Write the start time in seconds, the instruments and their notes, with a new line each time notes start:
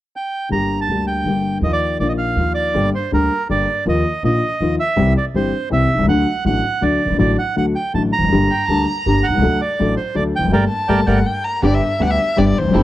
0.16 bandoneon G5
0.49 upright bass G1, upright piano G1 G2 D3 G3 A#3, bandoneon A#5
0.53 upright piano G4
0.81 bandoneon A5
0.87 upright bass D2, upright piano D2 D3 G3 A#3 G4
1.07 bandoneon G5
1.24 upright bass G1, upright piano G1 G2 D3 G3 A#3 G4
1.61 upright bass D#2, upright piano D#2 D#3 F3 A#3, bandoneon D#5
1.65 upright piano F4
1.73 bandoneon D5
1.99 upright bass A#1, upright piano A#1 A#2 D#3 F3 A#3 F4, bandoneon D5
2.09 bandoneon D#5
2.18 bandoneon F5
2.36 upright bass D#2, upright piano D#2 D#3 F3 A#3 F4
2.54 bandoneon D5
2.74 upright piano G1 G2 D3 G3 A#3 G4, upright bass G1
2.95 bandoneon C5
3.12 upright piano D2 D3 G3 A#3 G4, upright bass D2, bandoneon A#4
3.49 upright bass G1, upright piano G1 G2 D3 G3 A#3 G4, bandoneon D5
3.86 upright bass D#2, upright piano D#2 D#3 F3 A#3 F4, bandoneon D#5
4.23 upright bass A#1, upright piano A#1 A#2 D#3 F3 A#3 F4, bandoneon D#5
4.60 upright bass D#2, upright piano D#2 D#3 F3 A#3 F4
4.80 bandoneon E5
4.96 upright piano C2 C3 E3 G3 C4 G4, upright bass C2
5.18 bandoneon D5
5.34 upright bass G1, upright piano G1 G2 E3 G3 C4 G4, bandoneon C5
5.70 upright piano C2 C3 E3 G3 C4 G4, upright bass C2, bandoneon E5
5.93 upright piano B1, upright bass B1
5.99 upright bass C2, upright piano C2
6.03 upright piano C#2, upright bass C#2 D2
6.08 upright piano D2 D3 F#3 A3 F#4, bandoneon F#5
6.45 upright bass A1, upright piano A1 A2 D3 F#3 A3 F#4, bandoneon F#5
6.81 upright piano D2 D3 F#3 A3 F#4, upright bass D2, bandoneon D5
7.05 upright piano F#1, upright bass F#1
7.10 upright piano G1, upright bass G1
7.14 upright bass G#1, upright piano G#1 D3 F#3 F#4
7.19 upright piano A1 A2 A3, upright bass A1, bandoneon D5
7.39 bandoneon F#5
7.56 upright piano D2 D3 F#3 A3 F#4, upright bass D2, bandoneon F#5
7.75 bandoneon G5
7.94 upright piano A1 A2 D3 F#3 A3 F#4, upright bass A1, bandoneon A5
8.13 bandoneon A#5
8.19 upright bass E1 F1, upright piano E2
8.23 upright bass F#1, upright piano F2
8.28 upright piano G1 F#2 G2 D3 G3 A#3
8.32 upright bass G1, upright piano G4
8.51 violin G5
8.68 upright bass D2, upright piano D2 D3 G3 A#3 G4, violin A5
8.88 violin A#5
9.06 upright bass G1, upright piano G1 G2 D3 G3 A#3 G4
9.23 bandoneon F#5
9.29 upright bass B1, upright piano B1
9.34 upright bass C2, upright piano C2
9.38 upright bass C#2, upright piano C#2 D3 F#3 A3
9.42 upright piano D2 D4 A4, upright bass D2
9.61 bandoneon D5
9.79 upright piano A1 A2 F#3 A3 D4 A4, upright bass A1
9.97 bandoneon C5
10.14 upright piano D2 D3 F#3 A3 D4 A4, upright bass D2, bandoneon D5
10.36 upright bass E1, upright piano E2, bandoneon G5
10.44 upright bass F1, upright piano F2 F#2
10.48 upright bass F#1
10.52 upright bass G1, upright piano G3 A3 A#3, bandoneon A#4 D5 G5
10.69 violin A5
10.88 upright bass G1, upright piano G3 A3 A#3, bandoneon A#4 D5 G5
11.07 upright bass G1, upright piano G3 A3 A#3, bandoneon A#4 D5 G5, violin F#5
11.26 violin G5
11.44 violin A#5
11.63 upright bass G1, upright piano G1 G2 D3 G3 B3 G4, string section B3 D4 G4, violin D5
11.74 violin E5
11.99 upright piano D2 D3 G3 B3 G4, upright bass D2, string section B3 D4 G4, violin F#5
12.10 violin E5
12.36 upright piano G1 G2 D3 G3 B3 G4, upright bass G1, string section B3 D4 G4, violin D5
12.48 violin D5
12.59 upright bass E1, upright piano E2, violin C5
12.65 upright bass F1, upright piano F2
12.69 upright bass F#1, upright piano F#2, string section C4 E4
12.74 upright piano G1 G2 E3 A3 C4 G4, upright bass G1, string section A4